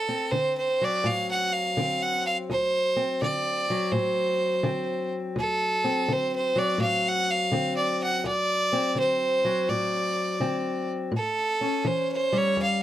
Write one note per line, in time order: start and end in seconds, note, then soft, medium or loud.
0.00 0.27 D2 medium
0.00 0.33 A4 loud
0.09 1.78 C4 medium
0.31 0.99 D3 medium
0.31 0.55 C5 medium
0.58 0.85 C5 medium
0.81 3.70 F#3 medium
0.81 1.07 D5 medium
1.04 1.71 A2 medium
1.04 1.29 F5 medium
1.31 1.54 F#5 loud
1.53 2.04 F5 medium
1.77 2.44 D3 medium
1.77 2.53 C4 medium
2.02 2.25 F#5 loud
2.27 2.37 F5 medium
2.50 3.16 D2 medium
2.50 3.18 C5 loud
2.96 4.63 C4 medium
3.22 3.88 D3 medium
3.22 3.93 D5 medium
3.70 6.55 F#3 medium
3.92 4.59 A2 medium
3.92 5.12 C5 medium
4.63 5.31 D3 medium
4.63 5.39 C4 medium
5.36 6.03 D2 medium
5.36 6.14 A4 loud
5.84 7.51 C4 medium
6.08 6.76 D3 medium
6.13 6.35 C5 medium
6.36 6.60 C5 medium
6.56 9.43 F#3 medium
6.56 6.81 D5 medium
6.78 7.46 A2 medium
6.78 7.10 F5 loud
7.08 7.32 F#5 loud
7.31 7.76 F5 medium
7.52 8.19 D3 medium
7.52 8.22 C4 medium
7.77 7.99 D5 medium
8.04 8.25 F#5 medium
8.24 8.92 D2 medium
8.24 8.94 D5 loud
8.73 10.40 C4 medium
8.95 9.63 D3 medium
9.00 9.71 C5 medium
9.45 11.13 F#3 medium
9.69 10.36 A2 medium
9.69 10.89 D5 medium
10.40 11.08 D3 medium
10.40 11.10 C4 medium
11.12 11.79 A2 medium
11.17 11.88 A4 medium
11.61 12.83 C#4 medium
11.85 12.52 E3 medium
11.85 12.10 C5 medium
12.12 12.40 C5 medium
12.33 12.83 G3 medium
12.38 12.60 C#5 loud
12.57 12.83 E2 medium
12.62 12.82 F5 medium